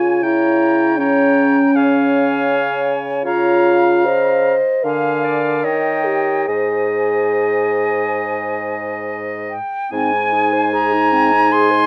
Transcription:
Already playing: C#3 F4 C#5 G#5
0.22 C#3 E4 C#5 G5 A#5
0.99 C#4 C#5 G5 A#5
1.75 C#3 C#5 F5 G#5
3.25 C#3 F4 C#5 F5 A#5
4.06 C5 D#5
4.84 D3 A#4 F5 G#5
5.24 D5
5.64 D#3 C#5 D#5 G5
6.06 G4
6.48 G#2 G#4 C5 D#5 G#5
9.50 G5
9.91 G#2 C4 D#4 G#5
10.13 D#4
10.33 G#4
10.53 C5
10.73 G#4 A#5
10.93 D#4
11.13 C4
11.33 D#4
11.52 G#4 C6
11.71 C5

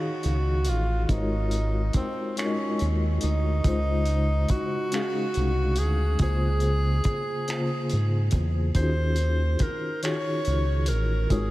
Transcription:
Already playing: D#3 D#4 F4 F#4 G#4 C#5 F5
0.23 C#2, closed hi-hat
0.65 A1 F4, closed hi-hat
1.05 G#3 F4
1.09 G#1 D#4 F4 F#4 A#4 C5, kick, closed hi-hat
1.18 C#5
1.51 closed hi-hat
1.93 D#2 C4, kick, closed hi-hat
2.37 G#3 C#4 D#4 F4 F#4 A#4 C#5, finger snap, closed hi-hat
2.46 D#5
2.79 D#2, closed hi-hat
3.21 D2 D#4, closed hi-hat
3.64 C#2 C#3 G#3 D#4 F4 C5, kick, closed hi-hat
4.05 closed hi-hat
4.49 C2 F#4, kick, closed hi-hat
4.92 G#3 C#4 D#4 G#4 F5, finger snap, closed hi-hat
5.34 C2, closed hi-hat
5.76 D2 G#4, closed hi-hat
6.19 C#2 C#3 A#3 F4 G#4, kick, closed hi-hat
6.23 C5
6.60 closed hi-hat
7.04 G#2, kick, closed hi-hat
7.48 C#3 A#3 F4 G#4 C5, finger snap, closed hi-hat
7.89 G#2, closed hi-hat
8.31 E2, kick, closed hi-hat
8.75 D#2 D#3 C#4 D#4 F4 F#4 G#4 C5, kick, closed hi-hat
9.16 closed hi-hat
9.59 C#2 A#4, kick, closed hi-hat
10.03 D#3 D#4 F4 F#4 G#4 C#5, finger snap, closed hi-hat
10.45 C#2, closed hi-hat
10.86 A1 A#4, closed hi-hat
11.30 G#1 G#3 D#4 F4 F#4 G#4 A#4 C#5, kick, closed hi-hat

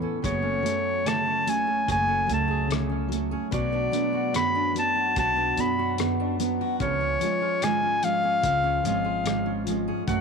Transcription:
Already playing: A2 E3 B3 C#4 E4 A4
0.02 C#4 A4
0.22 F#1 F#2 F#3 G#4 C#5, kick, closed hi-hat
0.42 A3 C#4
0.62 F#3 A3 C#4, closed hi-hat
1.04 C#3 A3 A5, cross-stick, closed hi-hat
1.26 C#4
1.46 F#3 A3 G#5, closed hi-hat
1.67 C#4 G#4
1.86 F#1 F#2 F#3 G#4, kick, closed hi-hat
1.92 G#5
2.08 A3 C#4
2.27 C#2 F#3 A3 C#4, closed hi-hat
2.34 A5
2.48 G#4
2.68 C#3 A3, closed hi-hat
2.72 cross-stick
2.89 C#4
3.09 F#3 A3, closed hi-hat
3.31 C#4 G#4
3.51 B1 B2 F#3 F#4 D5, kick, closed hi-hat
3.72 B3 D4
3.91 F#3 B3 D4, closed hi-hat
4.13 F#4
4.32 F#2 B3 B5, cross-stick, closed hi-hat
4.55 D4
4.74 F#3 B3, closed hi-hat
4.79 A5
4.96 D4 F#4
5.15 B1 B2 F#3 F#4, kick, closed hi-hat
5.19 A5
5.37 B3 D4
5.57 F#2 F#3 B3 D4 B5, closed hi-hat
5.78 F#4
5.98 F#2 B3, cross-stick, closed hi-hat
6.20 D4
6.39 F#3 B3, closed hi-hat
6.61 D4 F#4
6.80 C#2 C#3 F3 F4 C#5, kick, closed hi-hat
7.01 C#4
7.19 F3 G#3 F4, closed hi-hat
7.41 F4 G#4
7.60 G#2 G#3 G#5, cross-stick, closed hi-hat
7.83 C#4 F4
8.02 F3 G#3 F5, closed hi-hat
8.23 C#4 G#4
8.42 C#2 C#3 F3 F4, kick, closed hi-hat
8.64 C#4
8.84 G#1 F3 G#3 F4 F5, closed hi-hat
9.04 F4 G#4
9.24 G#2 G#3, cross-stick, closed hi-hat
9.46 C#4 F4
9.66 F3 G#3, closed hi-hat
9.88 C#4 G#4
10.07 F#2 A3 F#4 F#5, kick, closed hi-hat

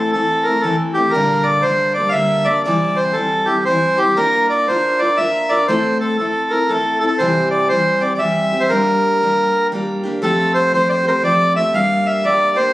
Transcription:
Already playing: A2 E3 A3 C4 E4 A4
0.13 E3 A3 C4 E4 A4
0.43 C4 E4 A#4
0.49 A3
0.61 E3 A3 A4
0.66 C4 E4
0.94 C4 E4 G4
0.98 A3
1.11 A#2 A#4
1.15 D3 G3 A#3 D4
1.43 D5
1.62 D3 G3 A#3 C5
1.67 D4
1.94 A#3 D4 D5
1.99 G3
2.09 E5 F5
2.14 D3 G3 A#3 D4
2.45 A#3 D4 D5
2.49 G3
2.64 C3 E3 G3 C4 D5
2.68 E4
2.96 C5
3.13 E3 G3 C4 A4
3.17 E4
3.46 C4 E4 G4
3.50 G3
3.65 E3 G3 C4 C5
3.70 E4
3.97 G3 C4 E4 G4
4.17 A#3 D4 F4 A#4
4.49 D5
4.68 A#3 D4 F4 A#4 C5
4.99 D4 F4 A#4 D5
5.17 A#3 D4 F4 A#4 E5
5.49 F4 A#4 D5
5.54 D4
5.68 A2 A3 C4 E4 A4 C5
6.01 A4
6.18 A3 C4 E4 A4
6.50 C4 E4 A4 A#4
6.69 A3 C4 E4 A4
7.00 C4 E4 A4
7.07 A4
7.18 C3 E3 G3 C4 G4 C5
7.50 D5
7.69 E3 G3 C4 C5
7.73 G4
8.01 G3 C4 G4 D5
8.15 D5
8.19 E3 G3 C4 G4 E5
8.52 G3 C4 G4
8.60 C5
8.69 G3 A#3 D4 G4 A#4
9.22 G3 A#3 D4 G4
9.72 G3 A#3 D4 G4
10.03 A#3 D4 G4
10.22 F3 A3 C4 G4 A4
10.54 C5
10.72 F3 A3 C4 G4 C5
10.89 C5 D5
11.04 A3 C4 G4 C5
11.08 A#4
11.23 F3 A3 C4 G4 D5
11.54 A3 C4 G4 E5
11.73 G3 A#3 D4 G4 F5
12.06 E5
12.24 G3 A#3 D4 G4 D5
12.55 A#3 D4 G4 C5

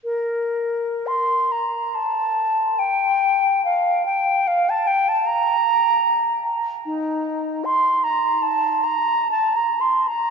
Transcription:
0.04 A#4
1.07 C6
1.52 A#5
1.95 A5
2.79 G5
3.65 F5
4.06 G5
4.47 F5
4.70 A5
4.87 G5
5.09 A5
5.26 A#5
6.86 D#4
7.65 C6
8.04 A#5
8.42 A5
8.84 A#5
9.31 A5
9.56 A#5
9.81 C6
10.08 A#5

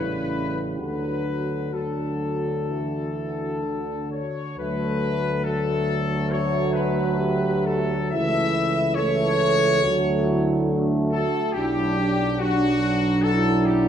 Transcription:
Already playing: A1 C#3 G3 E4 B4
0.78 D2 D3 F#3 F#4 B4
1.72 D3 F#3 F#4 A4
2.68 E3
3.63 D3
4.11 C#5
4.58 D2 F#3 A3 B4
5.44 F#3 A3 A4
6.30 F#4 C#5
6.73 B4
7.18 G4
7.64 F#4 A4
8.11 C#2 E3 A3 E4 E5
8.95 A3 A4 C#5
8.99 E3
9.83 D2 F#3 A3 F#4
10.26 E4
10.69 D4
11.12 F#4 A4
11.53 B1 F#3 D4 E4 G4
11.99 D4
12.40 F#3 D4 F#4
13.22 E4 A4
13.66 G4

